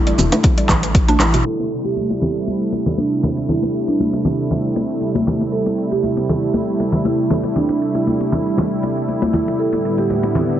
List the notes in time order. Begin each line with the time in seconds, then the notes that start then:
Already playing: E1 D3 G3 A3 E4
0.07 G3, closed hi-hat, muted conga
0.18 E1 B2, low conga, shaker
0.32 A3, closed hi-hat, low bongo, shaker
0.43 kick, closed hi-hat, muted conga, high conga, low conga, shaker
0.58 G3, closed hi-hat
0.69 A1 E3, kick, clap, high bongo, low bongo, muted conga, shaker
0.83 E3, closed hi-hat, shaker
0.95 kick, closed hi-hat, muted conga, shaker
1.08 D4, closed hi-hat, high conga
1.19 A1 E3 E4, clap, low bongo, high conga, low conga, shaker
1.34 B2 E4, closed hi-hat, muted conga, shaker
1.45 C3 G3 A3 E4 A4
1.60 muted conga
1.71 shaker
1.85 G4, muted conga
1.97 high conga
2.10 muted conga
2.22 low conga, shaker
2.36 shaker
2.47 muted conga, high conga, shaker
2.72 muted conga, shaker
2.86 low conga, shaker
2.98 D4, muted conga, high conga, shaker
3.23 high conga, low conga, shaker
3.37 muted conga, shaker
3.49 E4, low conga, shaker
3.63 muted conga
3.74 shaker
3.88 D4, muted conga, shaker
4.00 high conga, shaker
4.13 muted conga
4.25 low conga, shaker
4.39 shaker
4.51 muted conga, high conga, low conga, shaker
4.76 muted conga, shaker
4.90 shaker
5.01 muted conga, shaker
5.15 high conga
5.27 high conga, low conga, shaker
5.41 muted conga, shaker
5.52 A4, shaker
5.66 muted conga
5.78 shaker
5.92 G4, muted conga, shaker
6.03 high conga, shaker
6.17 muted conga
6.29 low conga, shaker
6.42 shaker
6.54 muted conga, high conga, shaker
6.80 muted conga, shaker
6.92 low conga, shaker
7.05 E4, muted conga, high conga, shaker
7.30 high conga, low conga, shaker
7.43 muted conga, shaker
7.56 D4, low conga, shaker
7.69 D4, muted conga
7.81 shaker
7.95 E4, muted conga, shaker
8.07 E4, high conga, shaker
8.20 muted conga
8.32 low conga, shaker
8.46 shaker
8.58 muted conga, high conga, low conga, shaker
8.83 muted conga, shaker
8.97 shaker
9.08 muted conga, shaker
9.22 high conga
9.33 E4, high conga, low conga, shaker
9.47 E4, muted conga, shaker
9.59 A2 D3 B3 A4, shaker
9.73 muted conga
9.85 shaker
9.98 G4, muted conga, shaker
10.10 high conga, shaker
10.23 muted conga
10.35 low conga, shaker
10.49 shaker